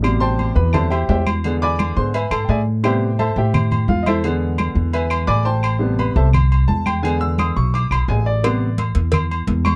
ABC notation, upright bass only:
X:1
M:4/4
L:1/8
Q:1/4=172
K:Am
V:1 name="Upright bass" clef=bass
A,,,3 E,,3 E,,2- | E,,3 ^G,,2 G,, A,,2- | A,,3 A,,3 E,,2- | E,,3 E,,3 A,,,2- |
A,,,3 C,,3 E,,2- | E,,3 B,,,2 B,,, A,,,2- | A,,,3 E,,3 E,,2 |]